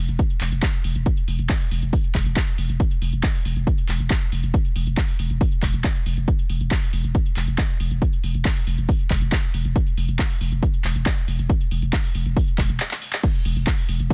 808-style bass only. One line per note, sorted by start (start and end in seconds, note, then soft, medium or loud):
0.09 0.19 E1 medium
0.41 0.51 E1 loud
0.52 0.62 E1 medium
0.84 0.95 E1 medium
0.95 1.06 E1 medium
1.28 1.38 E1 loud
1.39 1.49 E1 medium
1.71 1.82 E1 loud
1.82 1.93 E1 medium
2.15 2.25 E1 loud
2.26 2.36 E1 medium
2.58 2.69 E1 loud
2.69 2.80 E1 medium
3.02 3.12 E1 loud
3.13 3.23 E1 medium
3.45 3.56 E1 loud
3.56 3.67 E1 medium
3.89 3.99 E1 loud
4.00 4.10 E1 medium
4.32 4.43 E1 loud
4.43 4.54 E1 medium
4.76 4.86 E1 loud
4.87 4.97 E1 medium
5.19 5.30 E1 loud
5.30 5.41 E1 medium
5.63 5.73 E1 loud
5.74 5.84 E1 medium
6.06 6.17 E1 medium
6.17 6.28 E1 medium
6.50 6.60 E1 loud
6.61 6.71 E1 medium
6.93 7.04 E1 loud
7.04 7.15 E1 medium
7.37 7.47 E1 loud
7.48 7.58 E1 medium
7.80 7.91 E1 loud
7.91 8.02 E1 medium
8.24 8.34 E1 loud
8.35 8.45 E1 medium
8.67 8.78 E1 loud
8.78 8.89 E1 medium
9.11 9.21 E1 loud
9.22 9.32 E1 medium
9.54 9.64 E1 medium
9.65 9.75 E1 medium
9.97 10.08 E1 medium
10.08 10.19 E1 medium
10.41 10.51 E1 loud
10.52 10.62 E1 medium
10.84 10.95 E1 loud
10.95 11.06 E1 medium
11.28 11.38 E1 medium
11.39 11.49 E1 medium
11.71 11.82 E1 medium
11.82 11.93 E1 medium
12.15 12.25 E1 loud
12.26 12.36 E1 medium
12.58 12.69 E1 loud
12.69 12.80 E1 medium
13.45 13.56 E1 loud
13.56 13.67 E1 medium
13.89 13.99 E1 loud
14.00 14.10 E1 medium